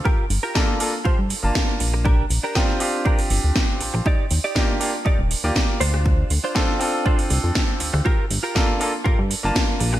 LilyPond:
<<
  \new Staff \with { instrumentName = "Clean electric guitar" } { \time 4/4 \key g \minor \tempo 4 = 120 <f' g' bes'>8 r16 <f' g' bes'>8. r8 <f' g' c''>16 r4. r16 | <d' g' bes'>8 r16 <d' g' bes'>8. r8 <d' g' bes'>16 r4. r16 | <ees' g' d''>8 r16 <ees' g' d''>8. r8 <ees' g' d''>16 r4 r16 <d' f' c''>8~ | <d' f' c''>8 r16 <d' f' c''>8. r8 <d' f' c''>16 r4. r16 |
<f' g' bes'>8 r16 <f' g' bes'>8. r8 <f' g' bes'>16 r4. r16 | }
  \new Staff \with { instrumentName = "Grand piano" } { \time 4/4 \key g \minor r4 <bes d' f' a'>8 <bes d' f' a'>16 r4 <bes d' f' a''>4~ <bes d' f' a''>16 | r4 <c' d' f' g'>8 <c' d' f' g'>2~ <c' d' f' g'>8 | r4 <bes d' f' g'>8 <bes d' f' g'>16 r4 <bes f' g' d''>8. r8 | r4 <c' d' f' a'>8 <c' d' f' a'>2~ <c' d' f' a'>8 |
r4 <bes d' f' a'>8 <bes d' f' a'>16 r4 <bes d' f' a''>4~ <bes d' f' a''>16 | }
  \new Staff \with { instrumentName = "Analog synth bass" } { \clef bass \time 4/4 \key g \minor r8 g,,16 r4 r16 g,16 g,16 r16 g,,16 r8 bes,,8~ | bes,,16 r16 bes,,16 r4. r16 g,,16 d,16 r8 bes,,16 bes,,16 | r8 ees,16 r4 r16 ees,,16 ees,,16 r16 ees,16 r8 d,8~ | d,16 r16 d,16 r4. r16 c,16 f,16 r8 d,16 d,16 |
r8 g,,16 r4 r16 g,16 g,16 r16 g,,16 r8 bes,,8 | }
  \new DrumStaff \with { instrumentName = "Drums" } \drummode { \time 4/4 bd8 hho8 <bd sn>8 hho8 bd8 hho8 <bd sn>8 hho8 | bd8 hho8 <bd sn>16 sn16 hho8 bd16 hho16 hho8 <bd sn>8 hho8 | bd8 hho8 <bd sn>8 hho8 bd8 hho8 <bd sn>8 hho16 ss16 | bd8 hho8 <bd sn>16 sn16 hho8 bd16 hho16 hho8 <bd sn>8 hho16 ss16 |
bd8 hho8 <bd sn>8 hho8 bd8 hho8 <bd sn>8 hho16 ss16 | }
>>